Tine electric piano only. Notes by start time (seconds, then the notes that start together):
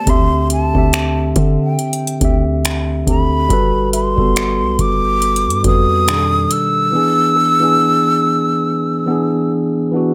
0.06 D3 C4 G4
0.10 E5
0.73 D3 C4 G4
0.78 E5
2.20 D3 C4 G4
2.25 E5
3.06 D3 C4 G4
3.10 A4
3.48 G3 F#4 A4
3.53 B4
4.16 G3 F#4 A4
4.21 B3
5.63 G3 F#4 A4
5.68 B4
6.06 B2 D#3 G3 D4
6.11 G#4
6.17 A4
6.92 E3 B3 D4
6.96 G#4
7.59 E3 B3 D4
7.64 G#4
9.06 E3 B3 D4
9.11 G#4
9.92 E3 B3 D4
9.96 F#4